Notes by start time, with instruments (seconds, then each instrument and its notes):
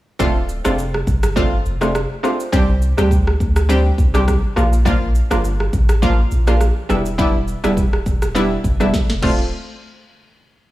0.19 sub bass D1, synth pluck A3 C4 D4 F4, kick, shaker
0.49 shaker
0.64 sub bass F1, synth pluck A3 C4 D4 F4, cross-stick, shaker
0.79 shaker
0.94 cross-stick
1.07 sub bass G1, kick, shaker
1.23 cross-stick, shaker
1.36 synth pluck A3 C4 D4 F4, kick, shaker
1.65 sub bass F1, shaker
1.81 synth pluck A3 C4 D4 F4, cross-stick, shaker
1.95 cross-stick, shaker
2.23 synth pluck A3 C4 D4 F4, cross-stick, shaker
2.40 shaker
2.52 sub bass C2, synth pluck G3 C4 D4 G4, kick, shaker
2.82 shaker
2.97 sub bass D2, synth pluck G3 C4 D4 G4, cross-stick, shaker
3.11 kick, shaker
3.27 cross-stick
3.40 sub bass D2, kick, shaker
3.56 cross-stick, shaker
3.69 synth pluck G3 C4 D4 G4, shaker
3.98 sub bass C2, kick, shaker
4.14 synth pluck G3 C4 D4 G4, cross-stick, shaker
4.28 kick, cross-stick, shaker
4.56 sub bass A#1, synth pluck F3 A#3 D4 F4, cross-stick, shaker
4.73 shaker
4.85 synth pluck F3 A#3 D4 F4, kick, shaker
5.15 shaker
5.31 sub bass G1, synth pluck F3 A#3 D4 F4, cross-stick, shaker
5.44 shaker
5.60 cross-stick
5.73 sub bass A1, kick, shaker
5.89 cross-stick, shaker
6.02 synth pluck F3 A#3 D4 F4, kick, shaker
6.31 sub bass A#1, shaker
6.47 synth pluck F3 A#3 D4 F4, cross-stick, shaker
6.61 cross-stick, shaker
6.89 sub bass E1, synth pluck G3 B3 D4 E4, cross-stick, shaker
7.06 shaker
7.18 synth pluck G3 B3 D4 E4, kick, shaker
7.48 shaker
7.64 sub bass D1, synth pluck G3 B3 D4 E4, cross-stick, shaker
7.77 kick, shaker
7.93 cross-stick
8.06 sub bass E1, kick, shaker
8.22 cross-stick, shaker
8.35 synth pluck G3 B3 D4 E4, shaker
8.64 sub bass G1, kick, shaker
8.80 sub bass E1, synth pluck G3 B3 D4 E4, cross-stick, shaker
8.94 kick, snare, shaker
9.10 sub bass E1, snare
9.22 sub bass D1, synth pluck A3 C4 D4 F4, kick, crash